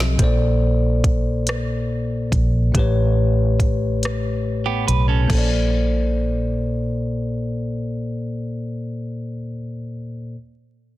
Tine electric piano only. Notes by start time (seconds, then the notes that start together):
Already playing: F3 C4 G4 A4 D#5
0.17 A#2 A#3 A4
0.22 C5 D5
2.72 A2 A3 G4
2.77 B4 C#5
5.24 A#2 A#3
5.31 A4 C5
5.38 D5